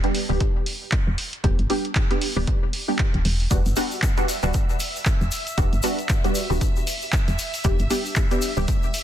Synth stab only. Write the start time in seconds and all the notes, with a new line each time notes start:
0.03 G3 B3 D4 G4
0.29 G3 B3 D4 G4
1.44 G3 B3 D4 G4
1.70 G3 B3 D4 G4
2.10 G3 B3 D4 G4
2.36 G3 B3 D4 G4
2.88 G3 B3 D4 G4
3.50 G3 B3 D4 F#4
3.76 G3 B3 D4 F#4
4.17 G3 B3 D4 F#4
4.43 G3 B3 D4 F#4
5.57 G3 B3 D4 F#4
5.83 G3 B3 D4 F#4
6.24 G3 B3 D4 F#4
6.50 G3 B3 D4 F#4
7.64 G3 B3 D4 G4
7.90 G3 B3 D4 G4
8.31 G3 B3 D4 G4
8.57 G3 B3 D4 G4